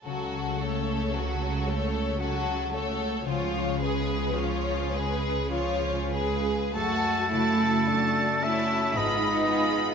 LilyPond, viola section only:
\new Staff \with { instrumentName = "Viola section" } { \time 3/4 \key fis \minor \tempo 4 = 55 fis8 a8 fis8 a8 fis8 a8 | eis8 gis8 eis8 gis8 eis8 gis8 | <a fis'>8 <a fis'>8 <a fis'>8 <a fis'>8 <aes f'>8 <aes f'>8 | }